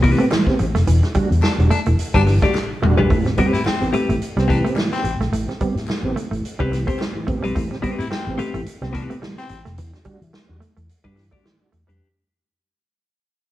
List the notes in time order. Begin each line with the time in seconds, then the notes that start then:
Already playing: C2
0.02 A2 E3 C4 G4 B4, muted clean electric guitar stroke, kick, open hi-hat
0.18 A3 B3 C4 G4, closed hi-hat
0.31 A2 E3 G3, snare, clap
0.47 B3 C4 G4, kick, snare
0.59 A1 C4 G4, muted clean electric guitar stroke, closed hi-hat
0.75 F1 A3, snare, closed hi-hat
0.87 E1 E3, closed hi-hat
1.03 D4 F#4, muted clean electric guitar stroke, snare, closed hi-hat
1.14 G3 D4 F#4, muted fingered electric bass stroke, kick, closed hi-hat
1.31 E2, closed hi-hat
1.42 D4, muted clean electric guitar stroke, muted fingered electric bass stroke, snare, clap
1.58 E1 G3 D4 F#4, closed hi-hat
1.70 A3 D4, closed hi-hat
1.86 E1 E3 A3, closed hi-hat
1.99 muted fingered electric bass stroke, closed hi-hat
2.14 G1 G3 D4 F#4 G4 B4, kick, closed hi-hat
2.26 E3, muted clean electric guitar stroke, snare, open hi-hat
2.42 G3 A3 D4 F#4 G4 D5, kick, snare, closed hi-hat
2.54 muted clean electric guitar stroke, snare, clap
2.82 E1 G3 A3 D4 F#4, mid tom
2.97 A#1 G3 D4 G4 B4, floor tom
3.10 A1 A2 E3 A3, kick, closed hi-hat
3.25 C4 G4, muted clean electric guitar stroke, snare, closed hi-hat
3.37 G3 B3 C4 G4 B4, muted fingered electric bass stroke, kick, closed hi-hat
3.53 A2 E4, snare, closed hi-hat
3.65 C4, muted fingered electric bass stroke, muted clean electric guitar stroke, snare, clap
3.81 A1 B3 C4 G4, closed hi-hat
3.93 A3 C4 G4 B4, closed hi-hat
4.09 A1 A2 E3 A3, closed hi-hat
4.21 muted fingered electric bass stroke, closed hi-hat
4.36 C2 G3 B3 C4 G4, snare, closed hi-hat
4.48 A2 E3 C4 D4 G4 B4, muted clean electric guitar stroke, kick, closed hi-hat
4.64 A3 B3 C4 G4, closed hi-hat
4.76 A2 E3 G3, snare, clap
4.92 B3 C4 G4, snare, closed hi-hat
5.04 A1 C4 G4, muted clean electric guitar stroke, closed hi-hat
5.19 A#1 A3, snare, closed hi-hat
5.32 A1 A2 E3 A3, closed hi-hat
5.48 C4 G4, muted clean electric guitar stroke, snare
5.60 G3 B3 C4 G4, muted fingered electric bass stroke, kick, closed hi-hat
5.75 A2, snare, closed hi-hat
5.88 muted fingered electric bass stroke, muted clean electric guitar stroke, snare, clap
6.03 A1 B3 C4 G4
6.16 A3, closed hi-hat
6.31 A1 A2 E3 A3, closed hi-hat
6.44 muted fingered electric bass stroke, closed hi-hat
6.59 C2 G3 B3 C4 G4 B4, kick
6.71 A2 E3, muted clean electric guitar stroke, snare, closed hi-hat
6.86 A3 B3 C4 G4 C5, kick, closed hi-hat
6.99 C4 G4, muted clean electric guitar stroke, snare, clap
7.15 A2 E3
7.27 A1 A3 B3 C4 G4, kick, closed hi-hat
7.43 A#1 G3 C4 G4 B4, closed hi-hat
7.55 A1 A2 E3 A3, kick, closed hi-hat
7.71 C4 G4, muted clean electric guitar stroke, snare
7.82 G3 B3 C4 G4 B4, muted fingered electric bass stroke, kick, closed hi-hat
7.98 A2 E4, closed hi-hat
8.10 C4, muted clean electric guitar stroke, muted fingered electric bass stroke, snare
8.27 A1 B3 C4 G4
8.38 A3 C4 G4 B4, closed hi-hat
8.54 A1 A2 E3 A3, closed hi-hat
8.66 muted fingered electric bass stroke, closed hi-hat
8.81 C2 G3 B3 C4 G4, snare
8.93 A2 E3 C4 D4 G4 B4, muted clean electric guitar stroke, kick, closed hi-hat
9.09 A3 B3 C4 G4, closed hi-hat
9.22 A2 E3 G3, snare
9.37 B3 C4 G4, snare, closed hi-hat
9.49 A1 C4 G4, muted clean electric guitar stroke, closed hi-hat
9.65 F1 A3, snare, closed hi-hat
9.77 E2 E3, closed hi-hat
9.93 D4 F#4, muted clean electric guitar stroke, snare, closed hi-hat
10.05 G3 D4 F#4, muted fingered electric bass stroke, kick, closed hi-hat
10.22 E3, closed hi-hat
10.33 muted clean electric guitar stroke, muted fingered electric bass stroke, snare
10.48 E2 G3 D4 F#4
10.60 A3, closed hi-hat
10.77 E2 E3 A3, closed hi-hat
10.89 muted fingered electric bass stroke, closed hi-hat
11.04 G2 G3 D4 F#4 G4 B4, kick
11.16 E3, muted clean electric guitar stroke, snare, open hi-hat
11.31 G3 A3 D4 F#4 G4 D5, kick
11.44 E3, muted clean electric guitar stroke, snare
11.60 G3 D4 F#4
11.72 E2 A3 D4 F#4, closed hi-hat
11.87 F2 G3 D4 G4 B4, closed hi-hat